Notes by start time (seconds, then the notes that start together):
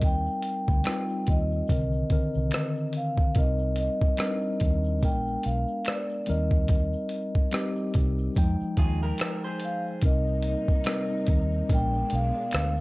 Already playing: D#2 G3 C4 D#4 A#4
0.02 G5, kick, closed hi-hat, shaker
0.26 shaker
0.42 closed hi-hat
0.68 D2, kick, shaker
0.84 G3 C4 D#4 F4, finger snap, cross-stick, closed hi-hat, shaker
1.09 shaker
1.27 D#2 D#5, kick, closed hi-hat, shaker
1.51 shaker
1.67 C2 D3 D#3 C4 A#4, kick, closed hi-hat, shaker
1.92 shaker
2.10 D3 D#3 C4 A#4, kick, closed hi-hat
2.34 C2, shaker
2.51 finger snap, cross-stick, closed hi-hat, shaker
2.75 shaker
2.93 closed hi-hat, shaker
2.97 F5
3.18 kick, shaker
3.35 C2 G3 C4 D#4 A#4 D#5, kick, closed hi-hat, shaker
3.59 shaker
3.76 D#5, closed hi-hat, shaker
4.01 kick, shaker
4.17 G3 C4 D4, finger snap, cross-stick, closed hi-hat, shaker
4.21 A#4
4.27 D#4
4.41 shaker
4.60 D#2, kick, closed hi-hat
4.84 shaker
5.01 A#1 G#3 B3 D4 A#4 G5, kick, closed hi-hat, shaker
5.27 shaker
5.43 B1 F5, closed hi-hat
5.68 shaker
5.85 D5, finger snap, cross-stick, closed hi-hat, shaker
6.09 shaker
6.26 D#2 G3 C4 D#4 A#4 D#5, closed hi-hat
6.51 kick, shaker
6.68 kick, closed hi-hat, shaker
6.93 shaker
7.09 closed hi-hat, shaker
7.35 kick, shaker
7.51 G3 C4 D#4 G4, finger snap, cross-stick, closed hi-hat, shaker
7.76 shaker
7.94 C2, kick, closed hi-hat
8.18 shaker
8.35 F2 F3 G#3 D#4 G5, kick, closed hi-hat, shaker
8.60 muted fingered electric bass stroke, shaker
8.77 D#2 F4 G#4, kick, closed hi-hat
9.02 G4 A#4, shaker
9.18 finger snap, cross-stick, closed hi-hat, shaker
9.43 G#4 C5, shaker
9.60 closed hi-hat
9.64 F5
9.86 shaker
10.02 C2 C3 G3 A#3 C4 D#4 A#4, kick, closed hi-hat, shaker
10.06 D#5
10.27 shaker
10.42 closed hi-hat, shaker
10.48 D#5
10.68 kick, shaker
10.84 G3 C4 D#4, finger snap, cross-stick, closed hi-hat, shaker
10.88 A#4
11.09 shaker
11.27 D#2, kick, closed hi-hat
11.52 shaker
11.68 A#1 B2 G#3 B3 D4 A#4, kick, closed hi-hat, shaker
11.74 G5
11.94 shaker
12.10 B1, closed hi-hat
12.15 F5
12.35 shaker
12.51 D2, finger snap, cross-stick, closed hi-hat, shaker
12.76 shaker